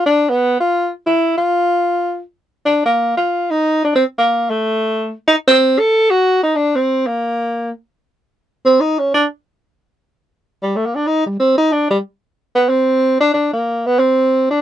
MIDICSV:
0, 0, Header, 1, 2, 480
1, 0, Start_track
1, 0, Tempo, 323450
1, 73, Time_signature, 4, 2, 24, 8
1, 21690, End_track
2, 0, Start_track
2, 0, Title_t, "Tenor saxophone"
2, 0, Program_c, 0, 66
2, 90, Note_on_c, 0, 62, 93
2, 436, Note_on_c, 0, 59, 92
2, 459, Note_off_c, 0, 62, 0
2, 885, Note_off_c, 0, 59, 0
2, 892, Note_on_c, 0, 65, 87
2, 1321, Note_off_c, 0, 65, 0
2, 1579, Note_on_c, 0, 64, 85
2, 1996, Note_off_c, 0, 64, 0
2, 2038, Note_on_c, 0, 65, 91
2, 3278, Note_off_c, 0, 65, 0
2, 3940, Note_on_c, 0, 62, 78
2, 4207, Note_off_c, 0, 62, 0
2, 4239, Note_on_c, 0, 58, 77
2, 4674, Note_off_c, 0, 58, 0
2, 4702, Note_on_c, 0, 65, 83
2, 5204, Note_on_c, 0, 63, 104
2, 5227, Note_off_c, 0, 65, 0
2, 5670, Note_off_c, 0, 63, 0
2, 5705, Note_on_c, 0, 62, 77
2, 5850, Note_off_c, 0, 62, 0
2, 5868, Note_on_c, 0, 60, 77
2, 5996, Note_off_c, 0, 60, 0
2, 6202, Note_on_c, 0, 58, 81
2, 6678, Note_on_c, 0, 57, 78
2, 6700, Note_off_c, 0, 58, 0
2, 7606, Note_off_c, 0, 57, 0
2, 7826, Note_on_c, 0, 63, 90
2, 7945, Note_off_c, 0, 63, 0
2, 8122, Note_on_c, 0, 60, 93
2, 8589, Note_on_c, 0, 69, 95
2, 8611, Note_off_c, 0, 60, 0
2, 9051, Note_on_c, 0, 66, 113
2, 9074, Note_off_c, 0, 69, 0
2, 9512, Note_off_c, 0, 66, 0
2, 9542, Note_on_c, 0, 63, 88
2, 9731, Note_on_c, 0, 62, 85
2, 9753, Note_off_c, 0, 63, 0
2, 10017, Note_on_c, 0, 60, 86
2, 10039, Note_off_c, 0, 62, 0
2, 10488, Note_on_c, 0, 58, 75
2, 10510, Note_off_c, 0, 60, 0
2, 11429, Note_off_c, 0, 58, 0
2, 12845, Note_on_c, 0, 60, 91
2, 13066, Note_on_c, 0, 63, 85
2, 13089, Note_off_c, 0, 60, 0
2, 13335, Note_on_c, 0, 61, 76
2, 13357, Note_off_c, 0, 63, 0
2, 13514, Note_off_c, 0, 61, 0
2, 13559, Note_on_c, 0, 62, 75
2, 13724, Note_off_c, 0, 62, 0
2, 15769, Note_on_c, 0, 55, 77
2, 15966, Note_on_c, 0, 57, 67
2, 15988, Note_off_c, 0, 55, 0
2, 16111, Note_on_c, 0, 58, 75
2, 16133, Note_off_c, 0, 57, 0
2, 16250, Note_on_c, 0, 62, 75
2, 16272, Note_off_c, 0, 58, 0
2, 16430, Note_on_c, 0, 63, 84
2, 16452, Note_off_c, 0, 62, 0
2, 16704, Note_off_c, 0, 63, 0
2, 16713, Note_on_c, 0, 55, 55
2, 16912, Note_on_c, 0, 60, 76
2, 16934, Note_off_c, 0, 55, 0
2, 17172, Note_off_c, 0, 60, 0
2, 17181, Note_on_c, 0, 63, 94
2, 17396, Note_on_c, 0, 62, 84
2, 17418, Note_off_c, 0, 63, 0
2, 17657, Note_off_c, 0, 62, 0
2, 17666, Note_on_c, 0, 55, 80
2, 17769, Note_off_c, 0, 55, 0
2, 18624, Note_on_c, 0, 59, 90
2, 18831, Note_on_c, 0, 60, 79
2, 18853, Note_off_c, 0, 59, 0
2, 19586, Note_off_c, 0, 60, 0
2, 19594, Note_on_c, 0, 62, 92
2, 19751, Note_off_c, 0, 62, 0
2, 19791, Note_on_c, 0, 62, 74
2, 20050, Note_off_c, 0, 62, 0
2, 20080, Note_on_c, 0, 58, 81
2, 20570, Note_on_c, 0, 59, 96
2, 20592, Note_off_c, 0, 58, 0
2, 20760, Note_on_c, 0, 60, 82
2, 20782, Note_off_c, 0, 59, 0
2, 21514, Note_off_c, 0, 60, 0
2, 21525, Note_on_c, 0, 62, 88
2, 21677, Note_off_c, 0, 62, 0
2, 21690, End_track
0, 0, End_of_file